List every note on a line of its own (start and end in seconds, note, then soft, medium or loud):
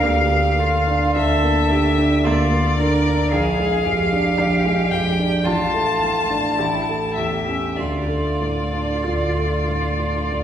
0.00 0.03 D2 soft
0.00 1.14 D2 soft
0.00 0.58 D3 soft
0.00 0.31 A#3 soft
0.00 0.90 A#3 soft
0.00 0.20 D4 soft
0.00 0.61 G4 soft
0.00 1.16 F5 medium
0.31 0.76 A#3 soft
0.58 1.04 D3 soft
0.58 1.17 F4 soft
0.87 1.33 D4 soft
1.15 2.23 D2 soft
1.15 1.72 A4 soft
1.15 2.27 E5 medium
1.43 1.88 A#3 soft
1.71 2.15 D3 soft
1.71 2.25 G4 soft
1.98 2.41 D4 soft
2.24 3.29 D2 soft
2.24 3.07 A#3 soft
2.24 2.77 F4 soft
2.24 3.32 D5 medium
2.52 2.95 A#3 soft
2.78 3.22 D3 soft
2.78 3.33 A#4 medium
3.06 3.33 D4 soft
3.31 4.37 A#1 soft
3.31 3.86 G#4 soft
3.31 4.92 F5 medium
3.60 4.02 G#3 soft
3.85 4.27 F2 soft
3.85 5.45 G4 medium
4.12 4.54 D4 soft
4.38 5.42 A#1 soft
4.38 5.19 D4 soft
4.65 5.07 G#3 soft
4.91 5.35 F2 soft
4.91 5.47 G5 medium
5.19 5.46 D4 soft
5.44 6.55 A1 soft
5.44 6.57 F4 soft
5.44 6.31 F4 soft
5.44 7.15 A5 medium
5.74 6.18 A3 soft
6.02 6.47 A2 soft
6.30 6.59 D4 soft
6.58 7.75 A1 soft
6.58 7.19 E4 soft
6.58 7.49 G4 soft
6.89 7.36 A3 soft
7.15 7.65 E2 soft
7.15 7.80 G4 soft
7.15 7.78 E5 soft
7.49 7.78 C#4 soft
7.77 9.04 D2 soft
7.77 10.43 F4 soft
7.77 10.43 D5 soft
8.09 8.59 A3 soft
8.41 8.91 A2 soft
8.73 9.23 D4 soft
9.04 10.30 D2 soft
9.04 10.01 F4 soft
9.38 9.87 A3 soft
9.68 10.18 A2 soft
10.00 10.43 D4 soft
10.31 10.43 D2 soft